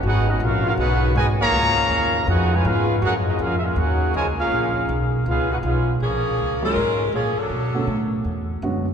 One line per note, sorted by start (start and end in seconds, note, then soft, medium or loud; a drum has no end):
0.00 0.39 G#1 medium
0.00 1.51 D#3 medium
0.00 5.97 G#3 medium
0.00 0.25 B3 medium
0.00 2.98 C#4 medium
0.00 0.25 D#4 medium
0.00 0.26 F#4 medium
0.00 1.51 F#4 medium
0.07 0.28 D#4 medium
0.07 0.27 G#4 medium
0.07 0.28 B4 medium
0.07 0.28 F#5 loud
0.27 0.41 F#3 medium
0.27 0.41 B3 medium
0.27 0.41 D#4 medium
0.31 0.43 B3 medium
0.31 0.42 F#4 medium
0.31 0.43 G#4 medium
0.31 0.43 D#5 medium
0.40 0.77 A#1 loud
0.40 0.66 C#4 medium
0.40 0.63 F4 medium
0.40 0.66 F#4 medium
0.40 0.65 A#4 medium
0.40 0.66 F5 loud
0.64 0.72 C#4 medium
0.64 0.70 F4 medium
0.64 0.72 F#4 medium
0.64 0.72 A#4 medium
0.64 0.73 F5 medium
0.77 1.14 B1 medium
0.77 1.13 B3 loud
0.77 1.13 D#4 medium
0.77 1.14 D#4 medium
0.77 1.13 F#4 medium
0.77 1.14 G#4 medium
0.77 1.14 B4 medium
0.77 1.14 F#5 loud
1.15 1.51 G#1 medium
1.15 1.26 B2 medium
1.15 1.26 D#3 medium
1.15 1.26 G#3 medium
1.15 1.28 F#4 medium
1.15 1.28 B4 medium
1.15 1.28 D#5 medium
1.15 1.28 G#5 loud
1.40 2.24 B2 medium
1.40 2.24 F3 medium
1.40 2.24 A#3 loud
1.40 2.24 G#4 loud
1.40 2.24 C#5 loud
1.40 2.24 F5 loud
1.40 2.24 A#5 loud
1.52 1.88 C#2 medium
1.52 3.01 C#3 medium
1.52 3.01 F4 medium
1.89 2.26 D#2 loud
2.27 2.64 F2 loud
2.27 2.52 D#4 medium
2.27 2.51 F#4 medium
2.27 2.52 G#4 medium
2.27 2.53 B4 medium
2.27 2.53 F#5 loud
2.50 2.65 B2 medium
2.50 2.64 F3 medium
2.50 2.63 G#3 medium
2.50 2.66 F4 medium
2.50 2.66 B4 medium
2.50 2.66 G#5 loud
2.55 2.66 C#5 medium
2.64 3.01 G#2 loud
2.64 2.95 G#3 medium
2.64 2.95 B3 medium
2.64 2.97 C#4 medium
2.64 2.95 F4 medium
2.64 2.97 G#4 medium
2.64 2.97 B4 medium
2.64 2.96 F5 loud
3.02 3.38 F#2 medium
3.02 5.24 C#3 medium
3.02 3.13 A#3 medium
3.02 5.24 A#3 medium
3.02 3.13 C#4 medium
3.02 3.15 C#4 medium
3.02 3.12 F#4 medium
3.02 5.24 G#4 loud
3.02 3.15 G#4 medium
3.02 3.15 A#4 medium
3.02 3.15 F#5 loud
3.26 3.40 B3 medium
3.26 3.38 D#4 medium
3.26 3.40 F4 medium
3.26 3.40 G#4 medium
3.26 3.40 D#5 medium
3.39 3.75 F2 loud
3.39 3.57 A#3 medium
3.39 3.57 C#4 medium
3.39 3.58 C#4 medium
3.39 3.57 F4 medium
3.39 3.58 G#4 medium
3.39 3.58 A#4 medium
3.39 3.58 F5 loud
3.59 3.64 E5 medium
3.63 3.76 A#3 medium
3.63 3.76 C#4 medium
3.63 3.78 C#4 medium
3.63 3.77 F4 medium
3.63 3.77 G#4 medium
3.63 3.77 A#4 medium
3.63 3.78 F5 medium
3.76 4.12 D#2 loud
3.76 4.14 A#3 medium
3.76 4.14 C#4 medium
3.76 4.15 C#4 medium
3.76 4.14 F#4 medium
3.76 4.15 G#4 medium
3.76 4.15 A#4 medium
3.76 4.15 F#5 loud
4.14 4.50 C#2 loud
4.14 4.26 C#3 medium
4.14 4.25 F3 medium
4.14 4.26 G#3 medium
4.14 4.26 F4 medium
4.14 4.27 A#4 medium
4.14 4.27 C#5 medium
4.14 4.26 G#5 loud
4.38 4.99 A#3 medium
4.38 4.99 C#4 medium
4.38 4.99 F4 medium
4.38 5.00 G#4 medium
4.38 4.99 A#4 medium
4.38 4.99 F5 loud
4.51 4.87 A#1 medium
4.89 5.25 B1 medium
5.25 5.62 C#2 medium
5.25 6.00 C#3 medium
5.25 5.49 G#3 medium
5.25 6.00 B3 medium
5.25 5.49 B3 medium
5.25 6.00 F4 medium
5.25 5.49 F4 medium
5.30 5.50 C#4 medium
5.30 5.50 G#4 medium
5.30 5.50 B4 medium
5.30 5.50 F5 medium
5.52 5.58 D#4 medium
5.52 5.57 F#4 medium
5.52 5.58 G#4 medium
5.52 5.58 B4 medium
5.52 5.58 F#5 medium
5.63 5.99 B1 medium
5.63 5.92 G#3 medium
5.63 5.93 B3 medium
5.63 5.93 C#4 medium
5.63 5.93 F4 medium
5.63 5.93 G#4 medium
5.63 5.93 B4 medium
5.63 5.93 F5 medium
6.00 6.37 A#1 medium
6.00 6.59 F3 medium
6.00 6.59 A#3 medium
6.00 6.59 C#4 medium
6.00 6.59 G#4 medium
6.38 6.75 C#2 medium
6.62 6.74 F#3 medium
6.62 6.74 G#3 medium
6.62 7.11 G#3 medium
6.62 6.75 A#3 medium
6.62 6.74 C#4 medium
6.62 7.11 C#4 medium
6.62 6.75 F4 medium
6.62 7.11 F4 loud
6.62 7.11 A#4 loud
6.76 7.12 G#2 medium
7.12 7.35 A#2 medium
7.12 7.38 F3 medium
7.12 7.38 A#3 medium
7.12 7.37 C#4 medium
7.12 7.38 G#4 medium
7.36 8.13 F#3 medium
7.36 8.13 C#4 medium
7.36 8.13 D4 medium
7.36 8.13 A4 medium
7.36 muted upright bass stroke soft
7.50 7.86 B2 medium
7.74 7.87 D3 medium
7.74 7.87 A3 medium
7.74 7.87 B3 medium
7.74 7.87 C#4 medium
7.74 7.87 F#4 medium
7.87 8.24 A2 medium
8.24 8.61 E2 medium
8.62 8.94 F#2 medium
8.62 8.84 D3 medium
8.62 8.85 G#3 medium
8.62 8.84 B3 medium
8.62 8.85 C#4 medium
8.62 8.85 F#4 medium